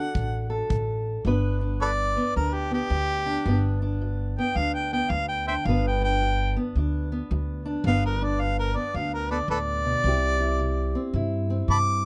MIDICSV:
0, 0, Header, 1, 5, 480
1, 0, Start_track
1, 0, Key_signature, 1, "major"
1, 0, Tempo, 549954
1, 1093, Time_signature, 4, 2, 24, 8
1, 10518, End_track
2, 0, Start_track
2, 0, Title_t, "Harmonica"
2, 0, Program_c, 0, 22
2, 0, Note_on_c, 0, 78, 90
2, 576, Note_off_c, 0, 78, 0
2, 1586, Note_on_c, 0, 69, 73
2, 1586, Note_on_c, 0, 71, 73
2, 1586, Note_on_c, 0, 74, 105
2, 1659, Note_off_c, 0, 69, 0
2, 1663, Note_off_c, 0, 71, 0
2, 2047, Note_off_c, 0, 74, 0
2, 2063, Note_on_c, 0, 70, 74
2, 2217, Note_on_c, 0, 67, 82
2, 2230, Note_off_c, 0, 70, 0
2, 2372, Note_off_c, 0, 67, 0
2, 2388, Note_on_c, 0, 67, 90
2, 3314, Note_off_c, 0, 67, 0
2, 3831, Note_on_c, 0, 79, 83
2, 3984, Note_on_c, 0, 77, 93
2, 3997, Note_off_c, 0, 79, 0
2, 4135, Note_off_c, 0, 77, 0
2, 4139, Note_on_c, 0, 79, 75
2, 4293, Note_off_c, 0, 79, 0
2, 4304, Note_on_c, 0, 79, 90
2, 4452, Note_on_c, 0, 77, 96
2, 4465, Note_off_c, 0, 79, 0
2, 4606, Note_off_c, 0, 77, 0
2, 4611, Note_on_c, 0, 79, 80
2, 4768, Note_off_c, 0, 79, 0
2, 4779, Note_on_c, 0, 72, 54
2, 4779, Note_on_c, 0, 76, 54
2, 4779, Note_on_c, 0, 79, 78
2, 4838, Note_off_c, 0, 76, 0
2, 4855, Note_off_c, 0, 72, 0
2, 4938, Note_on_c, 0, 77, 73
2, 4951, Note_off_c, 0, 79, 0
2, 5092, Note_off_c, 0, 77, 0
2, 5123, Note_on_c, 0, 79, 75
2, 5264, Note_off_c, 0, 79, 0
2, 5269, Note_on_c, 0, 79, 99
2, 5727, Note_off_c, 0, 79, 0
2, 6866, Note_on_c, 0, 77, 98
2, 7014, Note_off_c, 0, 77, 0
2, 7030, Note_on_c, 0, 70, 79
2, 7188, Note_on_c, 0, 74, 87
2, 7201, Note_off_c, 0, 70, 0
2, 7335, Note_on_c, 0, 77, 100
2, 7348, Note_off_c, 0, 74, 0
2, 7488, Note_off_c, 0, 77, 0
2, 7497, Note_on_c, 0, 70, 85
2, 7647, Note_on_c, 0, 74, 77
2, 7661, Note_off_c, 0, 70, 0
2, 7816, Note_on_c, 0, 77, 82
2, 7829, Note_off_c, 0, 74, 0
2, 7968, Note_off_c, 0, 77, 0
2, 7974, Note_on_c, 0, 70, 81
2, 8119, Note_off_c, 0, 70, 0
2, 8124, Note_on_c, 0, 69, 52
2, 8124, Note_on_c, 0, 71, 52
2, 8124, Note_on_c, 0, 74, 74
2, 8179, Note_off_c, 0, 71, 0
2, 8192, Note_off_c, 0, 69, 0
2, 8282, Note_off_c, 0, 74, 0
2, 8295, Note_on_c, 0, 69, 81
2, 8295, Note_on_c, 0, 71, 81
2, 8295, Note_on_c, 0, 74, 116
2, 8356, Note_off_c, 0, 71, 0
2, 8365, Note_off_c, 0, 69, 0
2, 9697, Note_off_c, 0, 74, 0
2, 10220, Note_on_c, 0, 81, 82
2, 10220, Note_on_c, 0, 83, 82
2, 10220, Note_on_c, 0, 86, 117
2, 10275, Note_off_c, 0, 83, 0
2, 10281, Note_off_c, 0, 81, 0
2, 10518, Note_off_c, 0, 86, 0
2, 10518, End_track
3, 0, Start_track
3, 0, Title_t, "Steel-string acoustic guitar"
3, 0, Program_c, 1, 25
3, 0, Note_on_c, 1, 50, 73
3, 0, Note_on_c, 1, 62, 60
3, 0, Note_on_c, 1, 66, 61
3, 0, Note_on_c, 1, 69, 59
3, 93, Note_off_c, 1, 50, 0
3, 130, Note_on_c, 1, 50, 64
3, 424, Note_off_c, 1, 69, 0
3, 435, Note_on_c, 1, 69, 61
3, 576, Note_off_c, 1, 50, 0
3, 610, Note_on_c, 1, 50, 65
3, 1057, Note_off_c, 1, 50, 0
3, 1073, Note_off_c, 1, 69, 0
3, 1075, Note_off_c, 1, 66, 0
3, 1079, Note_off_c, 1, 62, 0
3, 1096, Note_on_c, 1, 43, 73
3, 1102, Note_on_c, 1, 59, 62
3, 1109, Note_on_c, 1, 62, 64
3, 1110, Note_on_c, 1, 71, 68
3, 1403, Note_off_c, 1, 62, 0
3, 1407, Note_on_c, 1, 62, 54
3, 1540, Note_off_c, 1, 43, 0
3, 1583, Note_on_c, 1, 43, 73
3, 1887, Note_off_c, 1, 59, 0
3, 1890, Note_on_c, 1, 59, 58
3, 2024, Note_off_c, 1, 43, 0
3, 2059, Note_on_c, 1, 43, 64
3, 2062, Note_off_c, 1, 62, 0
3, 2065, Note_on_c, 1, 62, 57
3, 2359, Note_off_c, 1, 59, 0
3, 2363, Note_on_c, 1, 59, 56
3, 2502, Note_off_c, 1, 43, 0
3, 2534, Note_on_c, 1, 43, 69
3, 2842, Note_off_c, 1, 62, 0
3, 2846, Note_on_c, 1, 62, 59
3, 2980, Note_off_c, 1, 43, 0
3, 3023, Note_on_c, 1, 43, 76
3, 3029, Note_off_c, 1, 59, 0
3, 3032, Note_on_c, 1, 59, 61
3, 3034, Note_off_c, 1, 62, 0
3, 3037, Note_on_c, 1, 62, 65
3, 3330, Note_off_c, 1, 62, 0
3, 3334, Note_on_c, 1, 62, 54
3, 3464, Note_off_c, 1, 43, 0
3, 3505, Note_on_c, 1, 43, 75
3, 3823, Note_off_c, 1, 59, 0
3, 3827, Note_on_c, 1, 59, 60
3, 3945, Note_off_c, 1, 43, 0
3, 3989, Note_on_c, 1, 43, 69
3, 3990, Note_off_c, 1, 62, 0
3, 3993, Note_on_c, 1, 62, 52
3, 4165, Note_off_c, 1, 71, 0
3, 4297, Note_off_c, 1, 59, 0
3, 4300, Note_on_c, 1, 59, 56
3, 4427, Note_off_c, 1, 43, 0
3, 4478, Note_on_c, 1, 43, 65
3, 4779, Note_off_c, 1, 62, 0
3, 4782, Note_on_c, 1, 62, 58
3, 4910, Note_off_c, 1, 43, 0
3, 4950, Note_on_c, 1, 43, 68
3, 4952, Note_off_c, 1, 59, 0
3, 4956, Note_on_c, 1, 59, 59
3, 4960, Note_off_c, 1, 62, 0
3, 4963, Note_on_c, 1, 62, 64
3, 4969, Note_on_c, 1, 71, 66
3, 5244, Note_off_c, 1, 62, 0
3, 5248, Note_on_c, 1, 62, 57
3, 5387, Note_off_c, 1, 43, 0
3, 5424, Note_on_c, 1, 43, 77
3, 5727, Note_off_c, 1, 59, 0
3, 5730, Note_on_c, 1, 59, 64
3, 5863, Note_off_c, 1, 43, 0
3, 5909, Note_on_c, 1, 43, 62
3, 5912, Note_off_c, 1, 62, 0
3, 5915, Note_on_c, 1, 62, 55
3, 6202, Note_off_c, 1, 59, 0
3, 6214, Note_on_c, 1, 59, 61
3, 6345, Note_off_c, 1, 43, 0
3, 6388, Note_on_c, 1, 43, 68
3, 6671, Note_off_c, 1, 62, 0
3, 6681, Note_on_c, 1, 62, 62
3, 6824, Note_off_c, 1, 43, 0
3, 6840, Note_off_c, 1, 59, 0
3, 6848, Note_off_c, 1, 71, 0
3, 6856, Note_off_c, 1, 62, 0
3, 6862, Note_on_c, 1, 43, 73
3, 6867, Note_on_c, 1, 59, 67
3, 6875, Note_on_c, 1, 62, 64
3, 6882, Note_on_c, 1, 71, 65
3, 7162, Note_off_c, 1, 62, 0
3, 7172, Note_on_c, 1, 62, 60
3, 7301, Note_off_c, 1, 43, 0
3, 7345, Note_on_c, 1, 43, 68
3, 7630, Note_off_c, 1, 59, 0
3, 7641, Note_on_c, 1, 59, 61
3, 7782, Note_off_c, 1, 43, 0
3, 7820, Note_off_c, 1, 62, 0
3, 7820, Note_on_c, 1, 43, 66
3, 7829, Note_on_c, 1, 62, 60
3, 8116, Note_off_c, 1, 59, 0
3, 8125, Note_on_c, 1, 59, 62
3, 8259, Note_off_c, 1, 43, 0
3, 8294, Note_on_c, 1, 45, 54
3, 8593, Note_off_c, 1, 45, 0
3, 8597, Note_on_c, 1, 47, 56
3, 8755, Note_off_c, 1, 59, 0
3, 8763, Note_off_c, 1, 71, 0
3, 8772, Note_off_c, 1, 47, 0
3, 8773, Note_on_c, 1, 48, 79
3, 8779, Note_off_c, 1, 62, 0
3, 8779, Note_on_c, 1, 60, 61
3, 8782, Note_on_c, 1, 64, 58
3, 8793, Note_on_c, 1, 67, 69
3, 9073, Note_off_c, 1, 64, 0
3, 9076, Note_on_c, 1, 64, 61
3, 9215, Note_off_c, 1, 48, 0
3, 9246, Note_on_c, 1, 48, 64
3, 9555, Note_off_c, 1, 60, 0
3, 9558, Note_on_c, 1, 60, 64
3, 9692, Note_off_c, 1, 48, 0
3, 9726, Note_on_c, 1, 48, 66
3, 9731, Note_off_c, 1, 64, 0
3, 9734, Note_on_c, 1, 64, 55
3, 10027, Note_off_c, 1, 60, 0
3, 10037, Note_on_c, 1, 60, 59
3, 10172, Note_off_c, 1, 48, 0
3, 10212, Note_on_c, 1, 48, 68
3, 10513, Note_off_c, 1, 64, 0
3, 10518, Note_off_c, 1, 48, 0
3, 10518, Note_off_c, 1, 60, 0
3, 10518, Note_off_c, 1, 67, 0
3, 10518, End_track
4, 0, Start_track
4, 0, Title_t, "Upright bass"
4, 0, Program_c, 2, 32
4, 131, Note_on_c, 2, 33, 81
4, 524, Note_off_c, 2, 33, 0
4, 610, Note_on_c, 2, 33, 90
4, 1004, Note_off_c, 2, 33, 0
4, 1088, Note_on_c, 2, 31, 96
4, 1875, Note_off_c, 2, 31, 0
4, 2063, Note_on_c, 2, 38, 82
4, 2452, Note_off_c, 2, 38, 0
4, 2533, Note_on_c, 2, 38, 96
4, 2926, Note_off_c, 2, 38, 0
4, 3016, Note_on_c, 2, 31, 102
4, 3799, Note_off_c, 2, 31, 0
4, 3975, Note_on_c, 2, 38, 87
4, 4367, Note_off_c, 2, 38, 0
4, 4451, Note_on_c, 2, 38, 101
4, 4844, Note_off_c, 2, 38, 0
4, 4935, Note_on_c, 2, 31, 103
4, 5717, Note_off_c, 2, 31, 0
4, 5896, Note_on_c, 2, 38, 80
4, 6286, Note_off_c, 2, 38, 0
4, 6378, Note_on_c, 2, 38, 95
4, 6767, Note_off_c, 2, 38, 0
4, 6842, Note_on_c, 2, 31, 105
4, 7628, Note_off_c, 2, 31, 0
4, 7807, Note_on_c, 2, 38, 90
4, 8199, Note_off_c, 2, 38, 0
4, 8274, Note_on_c, 2, 38, 94
4, 8672, Note_off_c, 2, 38, 0
4, 8761, Note_on_c, 2, 36, 97
4, 9547, Note_off_c, 2, 36, 0
4, 9719, Note_on_c, 2, 43, 88
4, 10115, Note_off_c, 2, 43, 0
4, 10194, Note_on_c, 2, 43, 90
4, 10518, Note_off_c, 2, 43, 0
4, 10518, End_track
5, 0, Start_track
5, 0, Title_t, "Drums"
5, 131, Note_on_c, 9, 36, 64
5, 219, Note_off_c, 9, 36, 0
5, 614, Note_on_c, 9, 36, 65
5, 701, Note_off_c, 9, 36, 0
5, 10518, End_track
0, 0, End_of_file